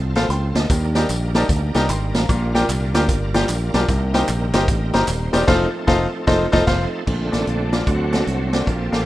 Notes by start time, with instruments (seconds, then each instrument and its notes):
Already playing: fingered electric bass C2, tonewheel organ C4 F4 A4
0.15 fingered electric bass A1, upright piano A4 C5 F5, snare, closed hi-hat
0.29 fingered electric bass C#2, upright piano G5 C6, closed hi-hat
0.55 fingered electric bass D2, upright piano D#5 A5, snare, closed hi-hat
0.69 fingered electric bass D#2, upright piano D#3, tonewheel organ G3 A#3 D4 D#4 A#4, kick, closed hi-hat, tambourine
0.95 upright piano D#4 G4 A#4 D5 G5, snare, closed hi-hat, tambourine
1.09 fingered electric bass A#1, clap, closed hi-hat, tambourine
1.35 upright piano D#4 G4 A#4 D5 A5, snare, clap, closed hi-hat, tambourine
1.49 fingered electric bass D2, kick, closed hi-hat, tambourine
1.74 fingered electric bass C2, upright piano D#4 G4 A#4 D5 A#5, snare, closed hi-hat, tambourine
1.89 fingered electric bass G#1, upright piano G5 C6, clap, closed hi-hat, tambourine
2.14 fingered electric bass A1, upright piano F5 A#5, snare, closed hi-hat, tambourine
2.29 fingered electric bass A#1, upright piano A#2, tonewheel organ G3 A#3 D4 F4 A#4, kick, closed hi-hat, tambourine
2.54 upright piano F4 G4 A#4 D5 G5, snare, closed hi-hat, tambourine
2.69 fingered electric bass C2, clap, closed hi-hat, tambourine
2.94 fingered electric bass D2, upright piano F4 G4 A#4 D5 G5, snare, clap, closed hi-hat, tambourine
3.09 fingered electric bass G1, kick, closed hi-hat, tambourine
3.34 upright piano F4 G4 A#4 D5 G5, snare, closed hi-hat, tambourine
3.49 fingered electric bass A#1, clap, closed hi-hat, tambourine
3.74 fingered electric bass B1, upright piano F4 G4 A#4 D5 A5, snare, closed hi-hat, tambourine
3.88 fingered electric bass C2, upright piano C3, tonewheel organ G3 A#3 C4 D#4 A#4, kick, closed hi-hat, tambourine
4.14 upright piano D#4 G4 A#4 C5 G5, snare, closed hi-hat, tambourine
4.28 fingered electric bass A#1, clap, closed hi-hat, tambourine
4.53 fingered electric bass G1, upright piano D#4 G4 A#4 C5 G5, snare, clap, closed hi-hat, tambourine
4.68 fingered electric bass A1, kick, closed hi-hat, tambourine
4.93 fingered electric bass G1, upright piano D#4 G4 A#4 C5 A#5, snare, closed hi-hat, tambourine
5.08 fingered electric bass D#1, tonewheel organ D#4 C5, clap, closed hi-hat, tambourine
5.33 fingered electric bass E1, tonewheel organ D4 A#4, upright piano D#4 G4 A#4 C5 D5, snare, closed hi-hat, tambourine
5.47 fingered electric bass F1, tonewheel organ F3 A3 C4 D#4 G#4, upright piano D#4 F4 A4 C5 F5, kick, snare, crash
5.52 tonewheel organ A4
5.87 fingered electric bass F1, upright piano D#4 F4 A4 C5 F5, kick, snare
6.27 fingered electric bass F1, upright piano D#4 F4 A4 C5 D#5, kick, snare
6.52 fingered electric bass F1, upright piano D#4 F4 A4 C5 D#5, kick, snare
6.67 fingered electric bass F1, upright piano C5 F5, kick, snare, crash
7.06 fingered electric bass A#1, upright piano A#2, tonewheel organ D3 A3 C4, string section A3 D4 F4, kick, crash
7.32 fingered electric bass A1, upright piano A#3 F4 A4 D5, tonewheel organ D4, snare, closed hi-hat
7.47 fingered electric bass A#1, closed hi-hat
7.72 upright piano A#3 F4 A4 D5, snare, closed hi-hat
7.87 fingered electric bass D2, upright piano D3, tonewheel organ F#3 A3 C4 F#4, string section C4 F#4, kick, closed hi-hat
8.12 upright piano C4 F#4 A4 D5, tonewheel organ D4, snare, closed hi-hat
8.26 fingered electric bass C2, tonewheel organ C4, closed hi-hat
8.53 upright piano C4 F#4 A4 D5, snare, closed hi-hat
8.66 fingered electric bass A#1, upright piano A#2, tonewheel organ F3 A#3 A4, string section A#3 F4 G4, kick, closed hi-hat
8.92 fingered electric bass A1, upright piano A#3 G4 A4 F5, snare, closed hi-hat
9.02 tonewheel organ B4